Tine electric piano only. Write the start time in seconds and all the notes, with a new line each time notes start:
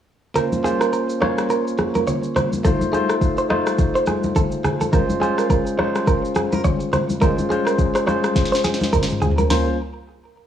0.35 A#3 C#4 F4 C5
0.63 A#3 C#4 F4 C5
1.20 A#3 C#4 F4 C#5
2.63 A3 D#4 F4 C5
2.92 A3 D#4 F4 C5
3.49 A3 D#4 F4 C5
4.92 G#3 C#4 F4 C5
5.20 G#3 C#4 F4 C5
5.78 G#3 C#4 F4 C5
7.20 G#3 C#4 F4 C5
7.49 G#3 C#4 F4 C5
8.06 G#3 C#4 F4 C5
9.50 A#3 C#4 F4 C5